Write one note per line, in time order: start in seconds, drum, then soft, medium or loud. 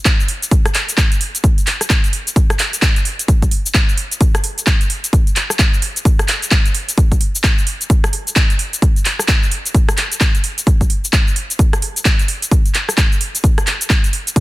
0.05 kick loud
0.05 clap loud
0.05 closed hi-hat medium
0.05 cabasa medium
0.20 cabasa soft
0.28 open hi-hat loud
0.42 closed hi-hat soft
0.42 cabasa medium
0.51 kick loud
0.51 closed hi-hat medium
0.51 cabasa medium
0.65 cross-stick medium
0.65 closed hi-hat soft
0.65 cabasa soft
0.74 clap medium
0.74 open hi-hat loud
0.89 closed hi-hat soft
0.89 cabasa medium
0.98 kick loud
0.98 clap loud
0.98 closed hi-hat medium
0.98 cabasa medium
1.12 closed hi-hat medium
1.12 cabasa soft
1.21 open hi-hat loud
1.35 closed hi-hat medium
1.35 cabasa medium
1.44 kick loud
1.44 closed hi-hat medium
1.44 cabasa medium
1.58 closed hi-hat soft
1.58 cabasa soft
1.67 clap medium
1.67 open hi-hat loud
1.81 cross-stick medium
1.81 closed hi-hat soft
1.81 cabasa medium
1.90 kick loud
1.90 clap loud
1.90 closed hi-hat medium
1.90 cabasa medium
2.04 closed hi-hat soft
2.04 cabasa soft
2.13 open hi-hat loud
2.27 closed hi-hat soft
2.27 cabasa medium
2.36 kick loud
2.36 closed hi-hat medium
2.36 cabasa medium
2.50 cross-stick medium
2.50 closed hi-hat soft
2.50 cabasa soft
2.59 clap medium
2.59 open hi-hat loud
2.73 closed hi-hat soft
2.73 cabasa medium
2.82 kick loud
2.82 clap loud
2.82 closed hi-hat medium
2.82 cabasa medium
2.96 closed hi-hat medium
2.96 cabasa soft
3.05 open hi-hat loud
3.19 closed hi-hat medium
3.19 cabasa medium
3.28 kick loud
3.28 closed hi-hat medium
3.28 cabasa medium
3.42 kick medium
3.42 closed hi-hat soft
3.42 cabasa soft
3.51 open hi-hat loud
3.66 cabasa medium
3.74 kick loud
3.74 clap loud
3.74 closed hi-hat medium
3.74 cabasa medium
3.89 cabasa soft
3.98 open hi-hat loud
4.12 closed hi-hat soft
4.12 cabasa medium
4.21 kick loud
4.21 closed hi-hat medium
4.21 cabasa medium
4.35 cross-stick medium
4.35 closed hi-hat soft
4.35 cabasa soft
4.44 open hi-hat loud
4.58 closed hi-hat soft
4.58 cabasa medium
4.67 kick loud
4.67 clap loud
4.67 closed hi-hat medium
4.67 cabasa medium
4.81 closed hi-hat medium
4.81 cabasa soft
4.90 open hi-hat loud
5.04 closed hi-hat medium
5.04 cabasa medium
5.13 kick loud
5.13 closed hi-hat medium
5.13 cabasa medium
5.27 closed hi-hat soft
5.27 cabasa soft
5.36 clap medium
5.36 open hi-hat loud
5.50 cross-stick medium
5.50 cabasa medium
5.59 kick loud
5.59 clap loud
5.59 closed hi-hat medium
5.59 cabasa medium
5.74 cabasa soft
5.82 open hi-hat loud
5.96 closed hi-hat soft
5.96 cabasa medium
6.05 kick loud
6.05 closed hi-hat medium
6.05 cabasa medium
6.19 cross-stick medium
6.19 closed hi-hat soft
6.19 cabasa soft
6.28 clap medium
6.28 open hi-hat loud
6.42 closed hi-hat soft
6.42 cabasa medium
6.51 kick loud
6.51 clap loud
6.51 closed hi-hat medium
6.51 cabasa medium
6.66 closed hi-hat medium
6.66 cabasa soft
6.75 open hi-hat loud
6.89 closed hi-hat medium
6.89 cabasa medium
6.98 kick loud
6.98 closed hi-hat medium
6.98 cabasa medium
7.12 kick medium
7.12 closed hi-hat soft
7.12 cabasa soft
7.21 open hi-hat loud
7.35 cabasa medium
7.44 kick loud
7.44 clap loud
7.44 closed hi-hat medium
7.44 cabasa medium
7.58 cabasa soft
7.67 open hi-hat loud
7.81 closed hi-hat soft
7.81 cabasa medium
7.90 kick loud
7.90 closed hi-hat medium
7.90 cabasa medium
8.04 cross-stick medium
8.04 closed hi-hat soft
8.04 cabasa soft
8.13 open hi-hat loud
8.27 closed hi-hat soft
8.27 cabasa medium
8.36 kick loud
8.36 clap loud
8.36 closed hi-hat medium
8.36 cabasa medium
8.50 closed hi-hat soft
8.50 cabasa soft
8.59 open hi-hat loud
8.73 closed hi-hat soft
8.73 cabasa medium
8.82 kick loud
8.82 closed hi-hat medium
8.82 cabasa medium
8.96 closed hi-hat soft
8.96 cabasa soft
9.05 clap medium
9.05 open hi-hat loud
9.19 cross-stick medium
9.19 cabasa medium
9.28 kick loud
9.28 clap loud
9.28 closed hi-hat medium
9.28 cabasa medium
9.43 cabasa soft
9.51 open hi-hat loud
9.65 closed hi-hat soft
9.65 cabasa medium
9.74 kick loud
9.74 closed hi-hat medium
9.74 cabasa medium
9.89 cross-stick medium
9.89 closed hi-hat soft
9.89 cabasa soft
9.97 clap medium
9.97 open hi-hat loud
10.12 closed hi-hat soft
10.12 cabasa medium
10.21 kick loud
10.21 clap loud
10.21 closed hi-hat medium
10.21 cabasa medium
10.35 closed hi-hat soft
10.35 cabasa soft
10.44 open hi-hat loud
10.58 closed hi-hat soft
10.58 cabasa medium
10.67 kick loud
10.67 closed hi-hat medium
10.67 cabasa medium
10.81 kick medium
10.81 closed hi-hat soft
10.81 cabasa soft
10.90 open hi-hat loud
11.05 cabasa medium
11.13 kick loud
11.13 clap loud
11.13 closed hi-hat medium
11.13 cabasa medium
11.28 cabasa soft
11.36 open hi-hat loud
11.50 closed hi-hat soft
11.50 cabasa medium
11.59 kick loud
11.59 closed hi-hat medium
11.59 cabasa medium
11.73 cross-stick medium
11.73 closed hi-hat soft
11.73 cabasa soft
11.82 open hi-hat loud
11.96 closed hi-hat soft
11.96 cabasa medium
12.05 kick loud
12.05 clap loud
12.05 closed hi-hat medium
12.05 cabasa medium
12.19 closed hi-hat medium
12.19 cabasa soft
12.28 open hi-hat loud
12.42 closed hi-hat medium
12.42 cabasa medium
12.51 kick loud
12.51 closed hi-hat medium
12.51 cabasa medium
12.66 closed hi-hat soft
12.66 cabasa soft
12.75 clap medium
12.75 open hi-hat loud
12.89 cross-stick medium
12.89 cabasa medium
12.98 kick loud
12.98 clap loud
12.98 closed hi-hat medium
12.98 cabasa medium
13.12 cabasa soft
13.21 open hi-hat loud
13.35 closed hi-hat soft
13.35 cabasa medium
13.44 kick loud
13.44 closed hi-hat medium
13.44 cabasa medium
13.58 cross-stick medium
13.58 closed hi-hat soft
13.58 cabasa soft
13.67 clap medium
13.67 open hi-hat loud
13.81 closed hi-hat soft
13.81 cabasa medium
13.90 kick loud
13.90 clap loud
13.90 closed hi-hat medium
13.90 cabasa medium
14.04 closed hi-hat medium
14.04 cabasa soft
14.13 open hi-hat loud
14.27 closed hi-hat medium
14.27 cabasa medium
14.36 kick loud
14.36 closed hi-hat medium
14.36 cabasa medium